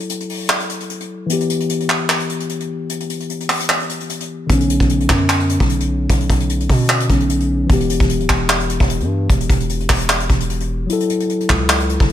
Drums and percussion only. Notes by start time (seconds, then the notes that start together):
0.00 closed hi-hat
0.09 closed hi-hat
0.20 closed hi-hat
0.30 open hi-hat
0.49 clap, closed hi-hat
0.60 closed hi-hat
0.69 closed hi-hat
0.80 closed hi-hat
0.90 closed hi-hat
1.00 closed hi-hat
1.30 closed hi-hat
1.40 closed hi-hat
1.50 closed hi-hat
1.60 closed hi-hat
1.69 closed hi-hat
1.80 closed hi-hat
1.90 clap, closed hi-hat
2.09 clap, closed hi-hat
2.20 closed hi-hat
2.29 closed hi-hat
2.40 closed hi-hat
2.49 closed hi-hat
2.60 closed hi-hat
2.90 closed hi-hat
3.00 closed hi-hat
3.10 closed hi-hat
3.20 closed hi-hat
3.29 closed hi-hat
3.40 closed hi-hat
3.50 clap, closed hi-hat, open hi-hat
3.60 closed hi-hat
3.69 clap, closed hi-hat
3.80 closed hi-hat
3.89 closed hi-hat
4.00 closed hi-hat
4.09 closed hi-hat
4.20 closed hi-hat
4.50 kick, closed hi-hat
4.60 closed hi-hat
4.70 closed hi-hat
4.80 kick, closed hi-hat
4.89 closed hi-hat
5.00 closed hi-hat
5.09 kick, clap, closed hi-hat
5.29 clap, closed hi-hat
5.40 closed hi-hat
5.49 closed hi-hat
5.60 kick, closed hi-hat
5.69 closed hi-hat
5.80 closed hi-hat
6.10 kick, closed hi-hat
6.20 closed hi-hat
6.30 kick, closed hi-hat
6.40 closed hi-hat
6.49 closed hi-hat
6.60 closed hi-hat
6.70 kick, open hi-hat
6.89 clap, closed hi-hat
7.00 closed hi-hat
7.09 kick, closed hi-hat
7.20 closed hi-hat
7.29 closed hi-hat
7.40 closed hi-hat
7.70 kick, closed hi-hat
7.80 closed hi-hat
7.90 closed hi-hat
8.00 kick, closed hi-hat
8.09 closed hi-hat
8.20 closed hi-hat
8.30 kick, clap, closed hi-hat
8.50 clap, closed hi-hat
8.60 closed hi-hat
8.70 closed hi-hat
8.80 kick, closed hi-hat
8.90 closed hi-hat
9.00 closed hi-hat
9.30 kick, closed hi-hat
9.40 closed hi-hat
9.50 kick, closed hi-hat
9.60 closed hi-hat
9.69 closed hi-hat
9.80 closed hi-hat
9.89 kick, clap, closed hi-hat, open hi-hat
10.00 closed hi-hat
10.10 clap, closed hi-hat
10.20 closed hi-hat
10.29 kick, closed hi-hat
10.40 closed hi-hat
10.50 closed hi-hat
10.60 closed hi-hat
10.90 closed hi-hat
11.00 closed hi-hat
11.10 closed hi-hat
11.20 closed hi-hat
11.29 closed hi-hat
11.40 closed hi-hat
11.49 kick, clap, closed hi-hat
11.70 clap, closed hi-hat
11.80 closed hi-hat
11.89 closed hi-hat
12.00 kick, closed hi-hat